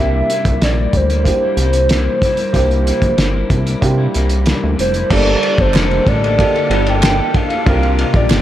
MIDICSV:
0, 0, Header, 1, 7, 480
1, 0, Start_track
1, 0, Key_signature, -2, "minor"
1, 0, Tempo, 640342
1, 1905, Time_signature, 4, 2, 24, 8
1, 6309, End_track
2, 0, Start_track
2, 0, Title_t, "Soft synth lead"
2, 0, Program_c, 0, 80
2, 0, Note_on_c, 0, 76, 112
2, 473, Note_on_c, 0, 74, 95
2, 484, Note_off_c, 0, 76, 0
2, 723, Note_on_c, 0, 72, 88
2, 734, Note_off_c, 0, 74, 0
2, 3356, Note_off_c, 0, 72, 0
2, 3596, Note_on_c, 0, 72, 82
2, 3815, Note_off_c, 0, 72, 0
2, 3840, Note_on_c, 0, 74, 100
2, 4202, Note_on_c, 0, 72, 84
2, 4213, Note_off_c, 0, 74, 0
2, 4558, Note_on_c, 0, 74, 99
2, 4569, Note_off_c, 0, 72, 0
2, 5151, Note_off_c, 0, 74, 0
2, 5163, Note_on_c, 0, 79, 100
2, 5516, Note_on_c, 0, 77, 107
2, 5528, Note_off_c, 0, 79, 0
2, 6116, Note_on_c, 0, 74, 91
2, 6127, Note_off_c, 0, 77, 0
2, 6309, Note_off_c, 0, 74, 0
2, 6309, End_track
3, 0, Start_track
3, 0, Title_t, "Upright piano"
3, 0, Program_c, 1, 0
3, 0, Note_on_c, 1, 58, 65
3, 0, Note_on_c, 1, 62, 62
3, 0, Note_on_c, 1, 64, 63
3, 0, Note_on_c, 1, 67, 78
3, 143, Control_c, 1, 64, 127
3, 574, Note_off_c, 1, 58, 0
3, 577, Note_off_c, 1, 62, 0
3, 581, Note_off_c, 1, 64, 0
3, 585, Note_off_c, 1, 67, 0
3, 931, Note_on_c, 1, 58, 66
3, 934, Note_on_c, 1, 62, 61
3, 946, Note_on_c, 1, 64, 61
3, 951, Note_on_c, 1, 67, 72
3, 1537, Note_off_c, 1, 58, 0
3, 1538, Note_off_c, 1, 62, 0
3, 1544, Note_off_c, 1, 64, 0
3, 1547, Note_off_c, 1, 67, 0
3, 1896, Note_on_c, 1, 58, 77
3, 1904, Note_on_c, 1, 62, 70
3, 1910, Note_on_c, 1, 64, 65
3, 1913, Note_on_c, 1, 67, 84
3, 2500, Note_off_c, 1, 58, 0
3, 2504, Note_off_c, 1, 62, 0
3, 2507, Note_off_c, 1, 64, 0
3, 2508, Note_off_c, 1, 67, 0
3, 2857, Note_on_c, 1, 58, 78
3, 2865, Note_on_c, 1, 62, 73
3, 2872, Note_on_c, 1, 64, 69
3, 2878, Note_on_c, 1, 67, 83
3, 3461, Note_off_c, 1, 58, 0
3, 3464, Note_off_c, 1, 62, 0
3, 3468, Note_off_c, 1, 64, 0
3, 3471, Note_off_c, 1, 67, 0
3, 3823, Note_on_c, 1, 58, 69
3, 3828, Note_on_c, 1, 62, 66
3, 3837, Control_c, 1, 64, 0
3, 3837, Note_on_c, 1, 67, 67
3, 3843, Note_on_c, 1, 69, 79
3, 3954, Control_c, 1, 64, 127
3, 4423, Note_off_c, 1, 58, 0
3, 4425, Note_off_c, 1, 62, 0
3, 4430, Note_off_c, 1, 67, 0
3, 4433, Note_off_c, 1, 69, 0
3, 4781, Note_on_c, 1, 58, 74
3, 4784, Note_on_c, 1, 62, 68
3, 4791, Note_on_c, 1, 67, 65
3, 4797, Note_on_c, 1, 69, 82
3, 5382, Note_off_c, 1, 58, 0
3, 5383, Note_off_c, 1, 62, 0
3, 5386, Note_off_c, 1, 67, 0
3, 5389, Note_off_c, 1, 69, 0
3, 5739, Note_on_c, 1, 62, 68
3, 5746, Note_on_c, 1, 65, 67
3, 5752, Note_on_c, 1, 67, 62
3, 5753, Control_c, 1, 64, 0
3, 5757, Note_on_c, 1, 70, 83
3, 5905, Control_c, 1, 64, 127
3, 6309, Note_off_c, 1, 62, 0
3, 6309, Note_off_c, 1, 65, 0
3, 6309, Note_off_c, 1, 67, 0
3, 6309, Note_off_c, 1, 70, 0
3, 6309, End_track
4, 0, Start_track
4, 0, Title_t, "String machine"
4, 0, Program_c, 2, 50
4, 3823, Note_on_c, 2, 67, 91
4, 3824, Note_on_c, 2, 62, 79
4, 3825, Note_on_c, 2, 69, 77
4, 3829, Note_on_c, 2, 50, 85
4, 5724, Note_off_c, 2, 67, 0
4, 5725, Note_off_c, 2, 69, 0
4, 5727, Note_off_c, 2, 50, 0
4, 5747, Note_on_c, 2, 48, 84
4, 5749, Note_on_c, 2, 65, 87
4, 5753, Note_on_c, 2, 55, 74
4, 6309, Note_off_c, 2, 48, 0
4, 6309, Note_off_c, 2, 55, 0
4, 6309, Note_off_c, 2, 62, 0
4, 6309, Note_off_c, 2, 65, 0
4, 6309, End_track
5, 0, Start_track
5, 0, Title_t, "Clean electric guitar"
5, 0, Program_c, 3, 27
5, 0, Note_on_c, 3, 48, 73
5, 0, Note_on_c, 3, 55, 76
5, 0, Note_on_c, 3, 58, 77
5, 0, Note_on_c, 3, 64, 81
5, 205, Note_off_c, 3, 48, 0
5, 214, Note_on_c, 3, 48, 52
5, 215, Note_off_c, 3, 55, 0
5, 224, Note_on_c, 3, 55, 56
5, 225, Note_off_c, 3, 58, 0
5, 229, Note_off_c, 3, 64, 0
5, 234, Note_on_c, 3, 58, 64
5, 242, Note_on_c, 3, 64, 66
5, 446, Note_off_c, 3, 48, 0
5, 455, Note_on_c, 3, 48, 69
5, 456, Note_off_c, 3, 58, 0
5, 457, Note_off_c, 3, 55, 0
5, 465, Note_on_c, 3, 58, 78
5, 466, Note_on_c, 3, 55, 73
5, 467, Note_off_c, 3, 64, 0
5, 476, Note_on_c, 3, 64, 83
5, 563, Note_off_c, 3, 64, 0
5, 572, Note_on_c, 3, 64, 46
5, 578, Note_off_c, 3, 58, 0
5, 579, Note_off_c, 3, 48, 0
5, 585, Note_off_c, 3, 55, 0
5, 587, Note_on_c, 3, 58, 46
5, 600, Note_on_c, 3, 55, 40
5, 813, Note_off_c, 3, 64, 0
5, 822, Note_on_c, 3, 64, 45
5, 826, Note_off_c, 3, 58, 0
5, 832, Note_off_c, 3, 55, 0
5, 833, Note_on_c, 3, 58, 45
5, 846, Note_on_c, 3, 55, 38
5, 1057, Note_off_c, 3, 64, 0
5, 1066, Note_on_c, 3, 64, 46
5, 1069, Note_off_c, 3, 58, 0
5, 1075, Note_off_c, 3, 55, 0
5, 1085, Note_on_c, 3, 58, 46
5, 1091, Note_on_c, 3, 55, 41
5, 1185, Note_off_c, 3, 64, 0
5, 1190, Note_off_c, 3, 55, 0
5, 1194, Note_on_c, 3, 48, 55
5, 1195, Note_off_c, 3, 58, 0
5, 1199, Note_on_c, 3, 55, 60
5, 1213, Note_on_c, 3, 58, 56
5, 1218, Note_on_c, 3, 64, 63
5, 1410, Note_off_c, 3, 48, 0
5, 1416, Note_off_c, 3, 55, 0
5, 1419, Note_on_c, 3, 48, 76
5, 1425, Note_on_c, 3, 55, 78
5, 1426, Note_off_c, 3, 58, 0
5, 1427, Note_off_c, 3, 64, 0
5, 1435, Note_on_c, 3, 58, 89
5, 1436, Note_on_c, 3, 64, 86
5, 1652, Note_off_c, 3, 48, 0
5, 1661, Note_on_c, 3, 48, 65
5, 1665, Note_off_c, 3, 55, 0
5, 1668, Note_off_c, 3, 58, 0
5, 1671, Note_off_c, 3, 64, 0
5, 1676, Note_on_c, 3, 55, 61
5, 1677, Note_on_c, 3, 58, 61
5, 1690, Note_on_c, 3, 64, 68
5, 1774, Note_off_c, 3, 64, 0
5, 1782, Note_off_c, 3, 58, 0
5, 1783, Note_off_c, 3, 48, 0
5, 1783, Note_on_c, 3, 64, 50
5, 1791, Note_off_c, 3, 55, 0
5, 1791, Note_on_c, 3, 58, 48
5, 1803, Note_on_c, 3, 55, 43
5, 1892, Note_on_c, 3, 48, 76
5, 1897, Note_off_c, 3, 55, 0
5, 1902, Note_off_c, 3, 58, 0
5, 1904, Note_off_c, 3, 64, 0
5, 1906, Note_on_c, 3, 55, 79
5, 1911, Note_on_c, 3, 58, 89
5, 1914, Note_on_c, 3, 64, 94
5, 2130, Note_off_c, 3, 48, 0
5, 2139, Note_on_c, 3, 48, 61
5, 2143, Note_off_c, 3, 55, 0
5, 2147, Note_off_c, 3, 58, 0
5, 2150, Note_off_c, 3, 64, 0
5, 2152, Note_on_c, 3, 55, 64
5, 2156, Note_on_c, 3, 58, 69
5, 2166, Note_on_c, 3, 64, 72
5, 2366, Note_off_c, 3, 48, 0
5, 2374, Note_off_c, 3, 55, 0
5, 2375, Note_on_c, 3, 48, 75
5, 2383, Note_off_c, 3, 64, 0
5, 2383, Note_on_c, 3, 55, 78
5, 2384, Note_off_c, 3, 58, 0
5, 2392, Note_on_c, 3, 64, 95
5, 2393, Note_on_c, 3, 58, 82
5, 2496, Note_off_c, 3, 64, 0
5, 2501, Note_off_c, 3, 48, 0
5, 2505, Note_off_c, 3, 55, 0
5, 2505, Note_on_c, 3, 64, 52
5, 2510, Note_off_c, 3, 58, 0
5, 2520, Note_on_c, 3, 58, 50
5, 2534, Note_on_c, 3, 55, 43
5, 2733, Note_off_c, 3, 64, 0
5, 2742, Note_on_c, 3, 64, 51
5, 2748, Note_off_c, 3, 58, 0
5, 2757, Note_on_c, 3, 58, 50
5, 2760, Note_off_c, 3, 55, 0
5, 2770, Note_on_c, 3, 55, 43
5, 2975, Note_off_c, 3, 64, 0
5, 2984, Note_on_c, 3, 64, 58
5, 2987, Note_off_c, 3, 58, 0
5, 2996, Note_on_c, 3, 58, 49
5, 2998, Note_off_c, 3, 55, 0
5, 3007, Note_on_c, 3, 55, 44
5, 3104, Note_off_c, 3, 55, 0
5, 3105, Note_off_c, 3, 64, 0
5, 3105, Note_on_c, 3, 48, 62
5, 3111, Note_off_c, 3, 58, 0
5, 3113, Note_on_c, 3, 55, 72
5, 3124, Note_on_c, 3, 58, 73
5, 3128, Note_on_c, 3, 64, 66
5, 3333, Note_off_c, 3, 48, 0
5, 3340, Note_off_c, 3, 55, 0
5, 3342, Note_on_c, 3, 48, 68
5, 3346, Note_off_c, 3, 58, 0
5, 3349, Note_off_c, 3, 64, 0
5, 3349, Note_on_c, 3, 55, 81
5, 3355, Note_on_c, 3, 58, 73
5, 3358, Note_on_c, 3, 64, 78
5, 3560, Note_off_c, 3, 48, 0
5, 3569, Note_on_c, 3, 48, 64
5, 3574, Note_off_c, 3, 55, 0
5, 3579, Note_off_c, 3, 58, 0
5, 3583, Note_on_c, 3, 55, 57
5, 3588, Note_on_c, 3, 58, 61
5, 3592, Note_off_c, 3, 64, 0
5, 3600, Note_on_c, 3, 64, 74
5, 3687, Note_off_c, 3, 64, 0
5, 3696, Note_on_c, 3, 64, 53
5, 3698, Note_off_c, 3, 48, 0
5, 3700, Note_off_c, 3, 58, 0
5, 3705, Note_off_c, 3, 55, 0
5, 3709, Note_on_c, 3, 58, 46
5, 3720, Note_on_c, 3, 55, 44
5, 3810, Note_off_c, 3, 55, 0
5, 3818, Note_off_c, 3, 58, 0
5, 3819, Note_on_c, 3, 55, 77
5, 3821, Note_off_c, 3, 64, 0
5, 3827, Note_on_c, 3, 58, 86
5, 3832, Note_on_c, 3, 62, 90
5, 3838, Note_on_c, 3, 69, 86
5, 4173, Note_off_c, 3, 69, 0
5, 4182, Note_on_c, 3, 69, 50
5, 4183, Note_off_c, 3, 55, 0
5, 4187, Note_off_c, 3, 58, 0
5, 4189, Note_off_c, 3, 62, 0
5, 4199, Note_on_c, 3, 62, 54
5, 4211, Note_on_c, 3, 58, 42
5, 4299, Note_off_c, 3, 58, 0
5, 4302, Note_on_c, 3, 55, 79
5, 4304, Note_off_c, 3, 69, 0
5, 4305, Note_off_c, 3, 62, 0
5, 4308, Note_on_c, 3, 58, 91
5, 4314, Note_on_c, 3, 62, 81
5, 4326, Note_on_c, 3, 69, 85
5, 4526, Note_off_c, 3, 55, 0
5, 4535, Note_on_c, 3, 55, 72
5, 4536, Note_off_c, 3, 58, 0
5, 4545, Note_on_c, 3, 58, 63
5, 4548, Note_off_c, 3, 62, 0
5, 4552, Note_off_c, 3, 69, 0
5, 4557, Note_on_c, 3, 62, 74
5, 4561, Note_on_c, 3, 69, 72
5, 4660, Note_off_c, 3, 55, 0
5, 4663, Note_off_c, 3, 69, 0
5, 4666, Note_off_c, 3, 58, 0
5, 4672, Note_off_c, 3, 62, 0
5, 4672, Note_on_c, 3, 69, 53
5, 4689, Note_on_c, 3, 62, 44
5, 4699, Note_on_c, 3, 58, 43
5, 4898, Note_off_c, 3, 69, 0
5, 4907, Note_on_c, 3, 69, 60
5, 4917, Note_off_c, 3, 62, 0
5, 4922, Note_off_c, 3, 58, 0
5, 4927, Note_on_c, 3, 62, 50
5, 4937, Note_on_c, 3, 58, 46
5, 5026, Note_off_c, 3, 69, 0
5, 5027, Note_off_c, 3, 58, 0
5, 5027, Note_on_c, 3, 55, 62
5, 5034, Note_off_c, 3, 62, 0
5, 5036, Note_on_c, 3, 58, 62
5, 5043, Note_on_c, 3, 62, 72
5, 5055, Note_on_c, 3, 69, 71
5, 5246, Note_off_c, 3, 55, 0
5, 5255, Note_on_c, 3, 55, 77
5, 5260, Note_off_c, 3, 58, 0
5, 5262, Note_off_c, 3, 62, 0
5, 5269, Note_off_c, 3, 69, 0
5, 5269, Note_on_c, 3, 58, 86
5, 5271, Note_on_c, 3, 62, 86
5, 5278, Note_on_c, 3, 69, 85
5, 5371, Note_off_c, 3, 69, 0
5, 5380, Note_off_c, 3, 55, 0
5, 5380, Note_on_c, 3, 69, 52
5, 5385, Note_off_c, 3, 62, 0
5, 5387, Note_off_c, 3, 58, 0
5, 5394, Note_on_c, 3, 62, 56
5, 5408, Note_on_c, 3, 58, 43
5, 5615, Note_off_c, 3, 69, 0
5, 5624, Note_on_c, 3, 69, 57
5, 5629, Note_off_c, 3, 62, 0
5, 5636, Note_off_c, 3, 58, 0
5, 5640, Note_on_c, 3, 62, 45
5, 5653, Note_on_c, 3, 58, 44
5, 5734, Note_off_c, 3, 58, 0
5, 5740, Note_on_c, 3, 48, 82
5, 5742, Note_off_c, 3, 62, 0
5, 5743, Note_on_c, 3, 58, 85
5, 5744, Note_off_c, 3, 69, 0
5, 5745, Note_on_c, 3, 65, 91
5, 5756, Note_on_c, 3, 67, 87
5, 6083, Note_off_c, 3, 67, 0
5, 6092, Note_on_c, 3, 67, 52
5, 6099, Note_off_c, 3, 65, 0
5, 6102, Note_off_c, 3, 48, 0
5, 6104, Note_off_c, 3, 58, 0
5, 6108, Note_on_c, 3, 65, 53
5, 6123, Note_on_c, 3, 58, 41
5, 6215, Note_on_c, 3, 48, 77
5, 6216, Note_off_c, 3, 58, 0
5, 6218, Note_off_c, 3, 67, 0
5, 6225, Note_on_c, 3, 58, 83
5, 6226, Note_off_c, 3, 65, 0
5, 6232, Note_on_c, 3, 67, 87
5, 6234, Note_on_c, 3, 65, 85
5, 6309, Note_off_c, 3, 48, 0
5, 6309, Note_off_c, 3, 58, 0
5, 6309, Note_off_c, 3, 65, 0
5, 6309, Note_off_c, 3, 67, 0
5, 6309, End_track
6, 0, Start_track
6, 0, Title_t, "Analog synth bass"
6, 0, Program_c, 4, 38
6, 0, Note_on_c, 4, 36, 105
6, 171, Note_off_c, 4, 36, 0
6, 336, Note_on_c, 4, 36, 90
6, 435, Note_off_c, 4, 36, 0
6, 462, Note_on_c, 4, 34, 100
6, 655, Note_off_c, 4, 34, 0
6, 701, Note_on_c, 4, 38, 90
6, 990, Note_off_c, 4, 38, 0
6, 1177, Note_on_c, 4, 36, 97
6, 1564, Note_off_c, 4, 36, 0
6, 1901, Note_on_c, 4, 36, 102
6, 2191, Note_off_c, 4, 36, 0
6, 2259, Note_on_c, 4, 34, 79
6, 2358, Note_off_c, 4, 34, 0
6, 2385, Note_on_c, 4, 31, 87
6, 2578, Note_off_c, 4, 31, 0
6, 2623, Note_on_c, 4, 36, 86
6, 2816, Note_off_c, 4, 36, 0
6, 2865, Note_on_c, 4, 48, 107
6, 3058, Note_off_c, 4, 48, 0
6, 3115, Note_on_c, 4, 36, 100
6, 3400, Note_off_c, 4, 36, 0
6, 3475, Note_on_c, 4, 38, 96
6, 3568, Note_off_c, 4, 38, 0
6, 3591, Note_on_c, 4, 29, 84
6, 3781, Note_off_c, 4, 29, 0
6, 3828, Note_on_c, 4, 31, 97
6, 4019, Note_off_c, 4, 31, 0
6, 4184, Note_on_c, 4, 31, 84
6, 4306, Note_on_c, 4, 29, 102
6, 4317, Note_off_c, 4, 31, 0
6, 4498, Note_off_c, 4, 29, 0
6, 4545, Note_on_c, 4, 33, 86
6, 4833, Note_off_c, 4, 33, 0
6, 5022, Note_on_c, 4, 31, 104
6, 5407, Note_off_c, 4, 31, 0
6, 5749, Note_on_c, 4, 36, 108
6, 6035, Note_off_c, 4, 36, 0
6, 6100, Note_on_c, 4, 34, 81
6, 6229, Note_on_c, 4, 31, 107
6, 6240, Note_off_c, 4, 34, 0
6, 6309, Note_off_c, 4, 31, 0
6, 6309, End_track
7, 0, Start_track
7, 0, Title_t, "Drums"
7, 223, Note_on_c, 9, 42, 67
7, 298, Note_off_c, 9, 42, 0
7, 338, Note_on_c, 9, 36, 97
7, 339, Note_on_c, 9, 42, 51
7, 413, Note_off_c, 9, 36, 0
7, 414, Note_off_c, 9, 42, 0
7, 462, Note_on_c, 9, 42, 79
7, 466, Note_on_c, 9, 38, 89
7, 537, Note_off_c, 9, 42, 0
7, 540, Note_off_c, 9, 38, 0
7, 698, Note_on_c, 9, 42, 64
7, 699, Note_on_c, 9, 36, 87
7, 773, Note_off_c, 9, 42, 0
7, 774, Note_off_c, 9, 36, 0
7, 823, Note_on_c, 9, 42, 52
7, 898, Note_off_c, 9, 42, 0
7, 940, Note_on_c, 9, 36, 73
7, 944, Note_on_c, 9, 42, 88
7, 1015, Note_off_c, 9, 36, 0
7, 1019, Note_off_c, 9, 42, 0
7, 1179, Note_on_c, 9, 42, 65
7, 1253, Note_off_c, 9, 42, 0
7, 1297, Note_on_c, 9, 42, 56
7, 1372, Note_off_c, 9, 42, 0
7, 1419, Note_on_c, 9, 42, 94
7, 1430, Note_on_c, 9, 38, 113
7, 1494, Note_off_c, 9, 42, 0
7, 1505, Note_off_c, 9, 38, 0
7, 1663, Note_on_c, 9, 36, 94
7, 1669, Note_on_c, 9, 42, 67
7, 1738, Note_off_c, 9, 36, 0
7, 1744, Note_off_c, 9, 42, 0
7, 1778, Note_on_c, 9, 42, 50
7, 1853, Note_off_c, 9, 42, 0
7, 1904, Note_on_c, 9, 36, 104
7, 1905, Note_on_c, 9, 42, 76
7, 1978, Note_off_c, 9, 36, 0
7, 1980, Note_off_c, 9, 42, 0
7, 2031, Note_on_c, 9, 42, 31
7, 2106, Note_off_c, 9, 42, 0
7, 2151, Note_on_c, 9, 42, 62
7, 2226, Note_off_c, 9, 42, 0
7, 2262, Note_on_c, 9, 36, 96
7, 2264, Note_on_c, 9, 42, 50
7, 2337, Note_off_c, 9, 36, 0
7, 2339, Note_off_c, 9, 42, 0
7, 2384, Note_on_c, 9, 42, 87
7, 2387, Note_on_c, 9, 38, 88
7, 2459, Note_off_c, 9, 42, 0
7, 2462, Note_off_c, 9, 38, 0
7, 2624, Note_on_c, 9, 36, 92
7, 2624, Note_on_c, 9, 42, 57
7, 2699, Note_off_c, 9, 36, 0
7, 2699, Note_off_c, 9, 42, 0
7, 2748, Note_on_c, 9, 42, 48
7, 2823, Note_off_c, 9, 42, 0
7, 2864, Note_on_c, 9, 36, 81
7, 2867, Note_on_c, 9, 42, 83
7, 2939, Note_off_c, 9, 36, 0
7, 2942, Note_off_c, 9, 42, 0
7, 3107, Note_on_c, 9, 42, 63
7, 3182, Note_off_c, 9, 42, 0
7, 3219, Note_on_c, 9, 42, 49
7, 3294, Note_off_c, 9, 42, 0
7, 3341, Note_on_c, 9, 42, 86
7, 3352, Note_on_c, 9, 38, 112
7, 3416, Note_off_c, 9, 42, 0
7, 3427, Note_off_c, 9, 38, 0
7, 3591, Note_on_c, 9, 42, 69
7, 3666, Note_off_c, 9, 42, 0
7, 3703, Note_on_c, 9, 42, 48
7, 3778, Note_off_c, 9, 42, 0
7, 3827, Note_on_c, 9, 36, 111
7, 3827, Note_on_c, 9, 49, 98
7, 3902, Note_off_c, 9, 36, 0
7, 3902, Note_off_c, 9, 49, 0
7, 3949, Note_on_c, 9, 51, 35
7, 4024, Note_off_c, 9, 51, 0
7, 4068, Note_on_c, 9, 51, 58
7, 4143, Note_off_c, 9, 51, 0
7, 4185, Note_on_c, 9, 36, 109
7, 4186, Note_on_c, 9, 51, 43
7, 4260, Note_off_c, 9, 36, 0
7, 4261, Note_off_c, 9, 51, 0
7, 4303, Note_on_c, 9, 39, 76
7, 4312, Note_on_c, 9, 51, 74
7, 4316, Note_on_c, 9, 38, 94
7, 4378, Note_off_c, 9, 39, 0
7, 4387, Note_off_c, 9, 51, 0
7, 4391, Note_off_c, 9, 38, 0
7, 4431, Note_on_c, 9, 51, 36
7, 4506, Note_off_c, 9, 51, 0
7, 4547, Note_on_c, 9, 36, 99
7, 4551, Note_on_c, 9, 51, 54
7, 4622, Note_off_c, 9, 36, 0
7, 4626, Note_off_c, 9, 51, 0
7, 4677, Note_on_c, 9, 51, 46
7, 4752, Note_off_c, 9, 51, 0
7, 4788, Note_on_c, 9, 36, 89
7, 4795, Note_on_c, 9, 51, 82
7, 4863, Note_off_c, 9, 36, 0
7, 4870, Note_off_c, 9, 51, 0
7, 4914, Note_on_c, 9, 51, 35
7, 4989, Note_off_c, 9, 51, 0
7, 5027, Note_on_c, 9, 51, 65
7, 5102, Note_off_c, 9, 51, 0
7, 5146, Note_on_c, 9, 51, 49
7, 5221, Note_off_c, 9, 51, 0
7, 5262, Note_on_c, 9, 51, 81
7, 5269, Note_on_c, 9, 39, 78
7, 5273, Note_on_c, 9, 38, 123
7, 5336, Note_off_c, 9, 51, 0
7, 5344, Note_off_c, 9, 39, 0
7, 5348, Note_off_c, 9, 38, 0
7, 5505, Note_on_c, 9, 51, 61
7, 5506, Note_on_c, 9, 36, 96
7, 5580, Note_off_c, 9, 51, 0
7, 5581, Note_off_c, 9, 36, 0
7, 5623, Note_on_c, 9, 51, 45
7, 5698, Note_off_c, 9, 51, 0
7, 5745, Note_on_c, 9, 51, 70
7, 5746, Note_on_c, 9, 36, 116
7, 5820, Note_off_c, 9, 51, 0
7, 5821, Note_off_c, 9, 36, 0
7, 5869, Note_on_c, 9, 51, 38
7, 5944, Note_off_c, 9, 51, 0
7, 5986, Note_on_c, 9, 51, 60
7, 6061, Note_off_c, 9, 51, 0
7, 6099, Note_on_c, 9, 51, 43
7, 6101, Note_on_c, 9, 36, 108
7, 6174, Note_off_c, 9, 51, 0
7, 6176, Note_off_c, 9, 36, 0
7, 6222, Note_on_c, 9, 39, 78
7, 6225, Note_on_c, 9, 51, 78
7, 6228, Note_on_c, 9, 38, 99
7, 6297, Note_off_c, 9, 39, 0
7, 6300, Note_off_c, 9, 51, 0
7, 6303, Note_off_c, 9, 38, 0
7, 6309, End_track
0, 0, End_of_file